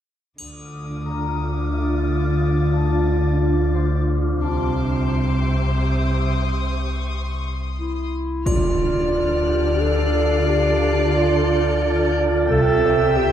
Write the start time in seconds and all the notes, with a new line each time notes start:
0.37 D2 D3 D4 F4 D6 D#6, triangle
1.06 A#5
1.72 E5 A6
2.73 A5
3.74 C5 C6
4.41 C2 C3 G4 C5 E5 A5 C6 D6
5.77 D#6
6.68 C#6
7.78 E4
8.46 D2 D3 F4 A4 D5 F6, impact, triangle
9.13 F#6
9.47 G4 G5
9.81 A4 C7
10.49 G4
11.16 F4
11.38 G6
11.55 C#7
12.50 C2 C3 G4 A4 C5 E5 G5 E6
12.85 D5
13.17 G4 G6